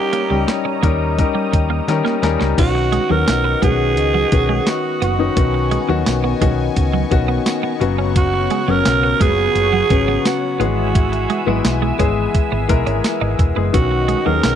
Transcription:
Already playing: grand piano G3 C#4 D#4 A#4, alto saxophone G4, analog synth pad C#5 D#5 A#5 D#6
0.13 clean electric guitar A#3, closed hi-hat
0.30 fingered electric bass C#2, clean electric guitar G3, grand piano G3 C#4 D#4 G4
0.48 muted clean electric guitar stroke, snare, closed hi-hat
0.65 clean electric guitar C#4
0.83 fingered electric bass D#2, grand piano G3 C#4 D#4 A#4 C#5, clean electric guitar A#3, kick, closed hi-hat
1.18 grand piano G3 C#4 D#4 A#4 D#5, kick, closed hi-hat
1.35 clean electric guitar G3
1.53 fingered electric bass D#2, grand piano G5, muted clean electric guitar stroke, kick, closed hi-hat
1.70 clean electric guitar A#3
1.88 fingered electric bass D#3, grand piano G3 C#4 D#4 A#4 G5, snare, closed hi-hat
2.05 clean electric guitar A#3, snare
2.22 fingered electric bass D#2, grand piano G3 C#4 D#4 A#4 G#5, muted clean electric guitar stroke, snare, closed hi-hat
2.40 fingered electric bass C#2, clean electric guitar C#4, snare
2.57 fingered electric bass B1, grand piano D#3 B3 C#4 F#4, analog synth pad B3 D#5 F#5 C#6, alto saxophone F#4, kick, closed hi-hat, crash
2.75 muted clean electric guitar stroke
2.92 clean electric guitar G#3, closed hi-hat
3.09 fingered electric bass D#2, grand piano D#3 B3 C#4 F#4, clean electric guitar F#3, alto saxophone A#4
3.27 fingered electric bass B1, muted clean electric guitar stroke, snare, closed hi-hat, tambourine
3.44 clean electric guitar B3
3.62 fingered electric bass B1, grand piano D#3 B3 C#4 F#4, clean electric guitar G#3, alto saxophone G#4, kick, closed hi-hat
3.97 fingered electric bass C#2, closed hi-hat
4.14 clean electric guitar F#3
4.32 fingered electric bass B1, grand piano D#3 B3 C#4 F#4, muted clean electric guitar stroke, kick, closed hi-hat
4.49 clean electric guitar G#3
4.67 alto saxophone F#4, snare, closed hi-hat, tambourine
5.02 fingered electric bass F#1, clean electric guitar B3, alto saxophone F#4, closed hi-hat
5.18 grand piano D#3 B3 C#4 D#4
5.36 fingered electric bass B1, grand piano D#3 B3 C#4 F#4, analog synth pad G#5, kick, closed hi-hat
5.54 muted clean electric guitar stroke
5.71 clean electric guitar G#3, closed hi-hat
5.88 fingered electric bass D#2, grand piano D#3 B3 C#4 F#4, clean electric guitar F#3
6.06 fingered electric bass B1, muted clean electric guitar stroke, snare, closed hi-hat, tambourine
6.24 clean electric guitar B3
6.41 fingered electric bass B1, grand piano D#3 B3 C#4 F#4, clean electric guitar G#3, kick, closed hi-hat
6.76 fingered electric bass C#2, kick, closed hi-hat
6.94 clean electric guitar F#3
7.11 fingered electric bass B1, grand piano D#3 B3 C#4 F#4, muted clean electric guitar stroke, kick, closed hi-hat
7.28 clean electric guitar B3
7.46 snare, closed hi-hat, tambourine
7.63 clean electric guitar B3
7.80 fingered electric bass F#1, grand piano C#3 F#3 B3 F#4, analog synth pad C#5 F#5, muted clean electric guitar stroke, closed hi-hat
7.98 clean electric guitar C#4
8.16 alto saxophone F#4, kick, closed hi-hat
8.34 muted clean electric guitar stroke
8.50 clean electric guitar G#3, closed hi-hat
8.68 fingered electric bass F#1, grand piano C#3 F#3 B3 C#4, clean electric guitar F#3, alto saxophone A#4
8.85 fingered electric bass B1, muted clean electric guitar stroke, snare, closed hi-hat, tambourine
9.03 clean electric guitar B3
9.20 fingered electric bass F#1, grand piano C#3 F#3 B3 C#4, clean electric guitar G#3, alto saxophone G#4, kick, closed hi-hat
9.55 fingered electric bass F#1, closed hi-hat
9.73 clean electric guitar F#3
9.90 fingered electric bass G#1, grand piano C#3 F#3 B3 C#4, muted clean electric guitar stroke, kick, closed hi-hat
10.08 clean electric guitar B3
10.25 alto saxophone F#4, snare, closed hi-hat, tambourine
10.59 fingered electric bass G#1, grand piano E3 G#3 B3 G#4, clean electric guitar B3, alto saxophone F#4, analog synth pad E5 G#5 E6, closed hi-hat
10.95 kick, closed hi-hat
11.12 muted clean electric guitar stroke, closed hi-hat
11.30 clean electric guitar G#3, closed hi-hat
11.46 fingered electric bass G#1, grand piano E3 G#3 B3 E4, clean electric guitar F#3
11.65 fingered electric bass B1, muted clean electric guitar stroke, snare, closed hi-hat, tambourine
11.82 clean electric guitar G#3
11.99 fingered electric bass G#1, grand piano E3 G#3 B3 G#4, clean electric guitar C#4, kick, closed hi-hat
12.35 kick, closed hi-hat
12.52 fingered electric bass G#1, clean electric guitar B3
12.68 fingered electric bass B1, grand piano E3 G#3 B3 A#4, muted clean electric guitar stroke, kick, closed hi-hat
12.87 fingered electric bass G#1, clean electric guitar C#4, closed hi-hat
13.04 snare, closed hi-hat, tambourine
13.21 fingered electric bass G#1, clean electric guitar D#4
13.39 fingered electric bass E1, muted clean electric guitar stroke, kick, closed hi-hat
13.55 fingered electric bass F#1, grand piano E3 G#3 B3 G#4, clean electric guitar B3
13.73 fingered electric bass B1, grand piano D#3 B3 C#4 F#4, alto saxophone F#4, analog synth pad D#5 F#5 C#6, kick, closed hi-hat
13.91 muted clean electric guitar stroke
14.08 clean electric guitar G#3, closed hi-hat
14.26 fingered electric bass D#2, grand piano D#3 B3 C#4 G#4, clean electric guitar F#3, alto saxophone A#4
14.43 fingered electric bass B1, muted clean electric guitar stroke, snare, closed hi-hat, tambourine

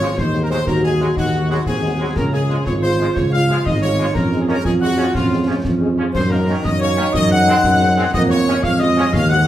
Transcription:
Already playing: euphonium F4, trumpet section C#5, woodwind section C#5, piccolo C#6
0.00 trombone section F3 G#3, french horn section C#4 F4 G#4
0.17 tuba D#2, euphonium D#4, woodwind section C5, trumpet section C5, piccolo C6, concert bass drum, snare, crash
0.33 french horn section G#3 F#4 G#4, snare
0.43 woodwind section A#4, trumpet section A#4, piccolo A#5
0.50 trombone section F#3 G#3, french horn section G#3 F#4 G#4, woodwind section C5, trumpet section C5, piccolo C6, snare
0.67 tuba D#2, euphonium F#4, woodwind section A#4, trumpet section A#4, piccolo A#5, concert bass drum, snare
0.84 french horn section G#3 F#4 G#4, trumpet section G#4, woodwind section G#4, piccolo G#5
1.00 trombone section F#3 G#3, french horn section G#3 F#4 G#4, snare
1.16 tuba D#2, euphonium D#4, trumpet section F#4, woodwind section F#4, piccolo F#5, concert bass drum, snare
1.33 french horn section G#3 F#4 G#4
1.49 trombone section F#3 G#3, french horn section G#3 F#4 G#4, trumpet section F#4, woodwind section F#4, piccolo F#5, snare
1.66 tuba D#2, euphonium C4, trumpet section G#4, woodwind section G#4, piccolo G#5, concert bass drum, snare
1.82 french horn section G#3 F#4 G#4
1.99 trombone section F#3 G#3, french horn section G#3 F#4 G#4
2.16 tuba C#2, euphonium C#4, trumpet section A#4, woodwind section A#4, piccolo A#5, concert bass drum, snare, crash
2.32 french horn section G#3 F4 G#4, woodwind section G#4, trumpet section G#4, piccolo G#5, snare
2.49 trombone section F3 G#3, french horn section G#3 F4 G#4, snare
2.66 tuba G#1, euphonium F4, trumpet section C#5, woodwind section C#5, piccolo C#6, concert bass drum, snare
2.82 french horn section G#3 F4 G#4, woodwind section C5, trumpet section C5, piccolo C6
2.99 trombone section F3 G#3, french horn section G#3 F4 G#4, snare
3.14 tuba C#2, woodwind section C#5, trumpet section C#5, piccolo C#6, concert bass drum, snare
3.31 french horn section G#3 F4 G#4, woodwind section F5, trumpet section F5, piccolo F6
3.49 trombone section F3 G#3, french horn section G#3 F4 G#4, snare
3.65 tuba G#1, euphonium D#4, trumpet section D#5, woodwind section D#5, piccolo D#6, concert bass drum, snare
3.82 french horn section G#3 F4 G#4, trumpet section C#5, woodwind section C#5, piccolo C#6
3.99 trombone section F3 G#3, french horn section G#3 F4 G#4
4.14 tuba F2, euphonium C#4, woodwind section A#4, trumpet section A#4, piccolo A#5, concert bass drum, snare, crash
4.32 french horn section G#3 C#4 G#4, snare
4.40 woodwind section G#4, trumpet section G#4, piccolo G#5
4.48 trombone section F3 C#4, french horn section G#3 C#4 G#4, woodwind section A#4, trumpet section A#4, piccolo A#5, snare
4.64 tuba F2, euphonium F4, woodwind section G#4, trumpet section G#4, piccolo G#5, concert bass drum, snare
4.80 french horn section G#3 C#4 G#4, woodwind section F#4, trumpet section F#4, piccolo F#5
4.97 trombone section F3 C#4, french horn section G#3 C#4 G#4, snare
5.14 tuba F2, euphonium C#4, woodwind section F4, trumpet section F4, piccolo F5, concert bass drum, snare
5.30 french horn section G#3 C#4 G#4
5.47 trombone section F3 C#4, french horn section G#3 C#4 G#4
5.64 tuba F2, concert bass drum, snare
5.80 french horn section G#3 C#4 G#4
5.97 trombone section F3 C#4, french horn section G#3 C#4 G#4
6.13 tuba F#2, euphonium D#4, woodwind section C5, trumpet section C5, piccolo C6, concert bass drum, snare, crash
6.30 french horn section A#3 C#4 D#4, woodwind section A#4, trumpet section A#4, piccolo A#5, snare
6.47 trombone section D#3 C#4, french horn section A#3 C#4 D#4, snare
6.63 tuba F#2, woodwind section D#5, trumpet section D#5, piccolo D#6, concert bass drum, snare
6.80 french horn section A#3 C#4 D#4, woodwind section C#5, trumpet section C#5, piccolo C#6
6.96 trombone section D#3 C#4, french horn section A#3 C#4 D#4, snare
7.13 tuba F#2, woodwind section D#5, trumpet section D#5, piccolo D#6, concert bass drum, snare
7.30 french horn section G#3 C4 D#4, woodwind section F#5, trumpet section F#5, piccolo F#6
7.47 french horn section G#3 C4 D#4, trombone section G#3 C4, snare
7.63 tuba F#2, concert bass drum, snare
7.80 french horn section G#3 C4 D#4
7.97 french horn section G#3 C4 D#4, trombone section G#3 C4
8.13 tuba F2, euphonium A#3, trumpet section D#5, woodwind section D#5, piccolo D#6, concert bass drum, snare, crash
8.29 french horn section G#3 C#4 F4, woodwind section C#5, trumpet section C#5, piccolo C#6, snare
8.47 french horn section G#3 C#4 F4, trombone section G#3 C#4, snare
8.62 tuba F2, euphonium G#3, woodwind section F5, trumpet section F5, piccolo F6, concert bass drum, snare
8.79 french horn section G#3 C#4 F4, woodwind section D#5, trumpet section D#5, piccolo D#6
8.97 trombone section G#3 C#4, french horn section G#3 C#4 F4, snare
9.12 tuba D#2, trumpet section F5, woodwind section F5, piccolo F6, concert bass drum, snare
9.29 french horn section G#3 C4 F#4, woodwind section F#5, trumpet section F#5, piccolo F#6

